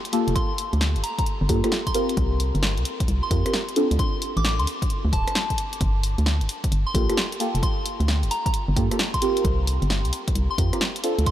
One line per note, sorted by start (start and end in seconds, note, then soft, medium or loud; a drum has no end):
0.05 closed hi-hat medium
0.13 1.47 A#3 loud
0.13 1.47 F4 medium
0.13 1.47 G4 medium
0.13 1.47 A4 loud
0.13 open hi-hat loud
0.28 0.35 F1 medium
0.28 closed hi-hat medium
0.35 0.55 C6 medium
0.35 kick loud
0.35 closed hi-hat medium
0.58 open hi-hat loud
0.73 0.97 D2 loud
0.73 closed hi-hat soft
0.81 snare loud
0.96 1.03 G1 loud
0.96 closed hi-hat soft
1.03 1.13 A#5 medium
1.03 open hi-hat loud
1.19 1.24 A#5 medium
1.19 kick loud
1.19 closed hi-hat medium
1.26 closed hi-hat medium
1.41 1.51 G1 loud
1.49 1.62 G2 medium
1.49 1.60 A#3 medium
1.49 1.60 F4 medium
1.49 1.60 G4 medium
1.49 1.60 A4 medium
1.49 kick loud
1.49 cross-stick soft
1.49 open hi-hat loud
1.64 1.70 A#3 medium
1.64 1.70 F4 medium
1.64 1.70 G4 medium
1.64 1.70 A4 medium
1.64 cross-stick medium
1.64 closed hi-hat medium
1.72 snare loud
1.87 2.23 C6 medium
1.87 kick medium
1.87 closed hi-hat soft
1.94 3.29 C4 loud
1.94 3.29 F4 medium
1.94 3.29 G4 medium
1.94 3.29 A#4 loud
1.94 open hi-hat loud
2.09 closed hi-hat medium
2.17 2.52 C2 loud
2.17 kick loud
2.17 closed hi-hat medium
2.40 open hi-hat loud
2.55 2.79 G1 loud
2.55 closed hi-hat soft
2.63 snare loud
2.78 2.85 C2 loud
2.78 closed hi-hat soft
2.85 open hi-hat loud
3.00 kick loud
3.00 closed hi-hat medium
3.08 3.21 C2 medium
3.08 closed hi-hat medium
3.23 3.40 C6 medium
3.31 3.44 F2 medium
3.31 3.42 C4 medium
3.31 3.42 F4 medium
3.31 3.42 G4 medium
3.31 3.42 A#4 medium
3.31 kick loud
3.31 cross-stick soft
3.31 open hi-hat loud
3.46 3.51 C4 medium
3.46 3.51 F4 medium
3.46 3.51 G4 medium
3.46 3.51 A#4 loud
3.46 cross-stick medium
3.46 closed hi-hat medium
3.53 snare loud
3.69 closed hi-hat soft
3.76 5.11 C4 medium
3.76 5.11 D4 medium
3.76 5.11 F4 medium
3.76 5.11 A4 loud
3.76 open hi-hat loud
3.91 3.98 D2 medium
3.91 closed hi-hat medium
3.99 4.19 C6 medium
3.99 kick loud
3.99 closed hi-hat medium
4.22 open hi-hat medium
4.37 4.61 A1 medium
4.37 4.42 D6 medium
4.37 closed hi-hat soft
4.45 4.54 D6 medium
4.45 snare loud
4.59 4.66 D2 loud
4.59 5.05 C6 medium
4.59 closed hi-hat soft
4.67 open hi-hat medium
4.82 kick loud
4.82 closed hi-hat medium
4.90 closed hi-hat medium
5.05 5.14 D2 loud
5.13 5.26 D1 medium
5.13 5.78 A5 medium
5.13 kick loud
5.13 cross-stick soft
5.13 open hi-hat medium
5.28 cross-stick medium
5.28 closed hi-hat medium
5.35 snare loud
5.50 kick medium
5.50 closed hi-hat medium
5.58 open hi-hat loud
5.73 closed hi-hat medium
5.81 6.16 G1 loud
5.81 kick loud
5.81 closed hi-hat medium
6.03 open hi-hat loud
6.18 6.43 D2 loud
6.18 closed hi-hat soft
6.26 snare loud
6.41 6.48 G1 loud
6.41 closed hi-hat soft
6.49 open hi-hat loud
6.64 kick loud
6.64 closed hi-hat medium
6.72 6.85 G1 medium
6.72 closed hi-hat medium
6.87 7.04 C6 medium
6.94 7.08 A#1 medium
6.94 7.05 A#3 medium
6.94 7.05 F4 medium
6.94 7.05 G4 medium
6.94 7.05 A4 medium
6.94 kick loud
6.94 cross-stick soft
6.94 open hi-hat loud
7.09 7.15 A#3 medium
7.09 7.15 F4 medium
7.09 7.15 G4 medium
7.09 7.15 A4 medium
7.09 cross-stick medium
7.09 closed hi-hat medium
7.17 snare loud
7.32 closed hi-hat medium
7.40 8.74 A#3 medium
7.40 8.74 F4 medium
7.40 8.74 G4 medium
7.40 8.74 A4 loud
7.40 open hi-hat loud
7.55 7.62 F1 medium
7.55 closed hi-hat medium
7.63 7.83 C6 medium
7.63 kick loud
7.63 closed hi-hat medium
7.86 open hi-hat loud
8.00 8.24 D2 loud
8.00 closed hi-hat soft
8.08 snare loud
8.23 8.30 G1 loud
8.23 closed hi-hat soft
8.31 8.40 A#5 medium
8.31 open hi-hat loud
8.46 8.51 A#5 medium
8.46 kick loud
8.46 closed hi-hat medium
8.54 closed hi-hat medium
8.68 8.78 G1 loud
8.76 8.89 G2 medium
8.76 8.87 A#3 medium
8.76 8.87 F4 medium
8.76 8.87 G4 medium
8.76 8.87 A4 medium
8.76 kick loud
8.76 cross-stick soft
8.76 open hi-hat loud
8.91 8.97 A#3 medium
8.91 8.97 F4 medium
8.91 8.97 G4 medium
8.91 8.97 A4 medium
8.91 cross-stick medium
8.91 closed hi-hat medium
8.99 snare loud
9.14 9.50 C6 medium
9.14 kick medium
9.14 closed hi-hat medium
9.22 10.56 C4 medium
9.22 10.56 F4 medium
9.22 10.56 G4 medium
9.22 10.56 A#4 loud
9.22 open hi-hat loud
9.37 closed hi-hat medium
9.45 9.79 C2 loud
9.45 kick loud
9.45 closed hi-hat medium
9.67 open hi-hat loud
9.82 10.06 G1 loud
9.82 closed hi-hat soft
9.90 snare loud
10.05 10.12 C2 loud
10.05 closed hi-hat soft
10.13 open hi-hat loud
10.28 kick loud
10.28 closed hi-hat medium
10.35 10.49 C2 medium
10.35 closed hi-hat medium
10.51 10.68 C6 medium
10.58 10.71 F2 medium
10.58 10.69 C4 medium
10.58 10.69 F4 medium
10.58 10.69 G4 medium
10.58 10.69 A#4 medium
10.58 kick loud
10.58 cross-stick soft
10.58 open hi-hat loud
10.73 10.79 C4 medium
10.73 10.79 F4 medium
10.73 10.79 G4 medium
10.73 10.79 A#4 loud
10.73 cross-stick medium
10.73 closed hi-hat medium
10.81 snare loud
10.96 closed hi-hat medium
11.04 11.31 C4 loud
11.04 11.31 D4 medium
11.04 11.31 F4 medium
11.04 11.31 A4 loud
11.04 open hi-hat loud
11.19 11.25 D2 medium
11.19 closed hi-hat medium
11.26 11.31 C6 medium
11.26 kick loud
11.26 closed hi-hat medium